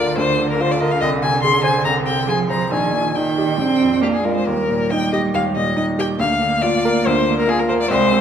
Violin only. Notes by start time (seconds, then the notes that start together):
Already playing: D5
0.18 C5
0.50 A#4
0.61 C5
0.71 D5
0.80 D#5
0.91 F5
1.01 D#5
1.22 G#5
1.42 C6
1.64 G#5
1.85 A#5
2.06 G5
2.30 G#5
2.50 A#5
2.73 G#5
3.15 G5
4.03 G4
4.13 G#4
4.25 A#4
4.36 C5
4.47 A#4
4.90 G5
5.13 D#5
5.35 F5
5.56 D#5
5.77 D#5
5.99 G5
6.19 F5
6.62 D5
7.06 C5
7.39 A#4
7.49 G#4
7.59 A#4
7.69 C5
7.81 D5
7.91 C5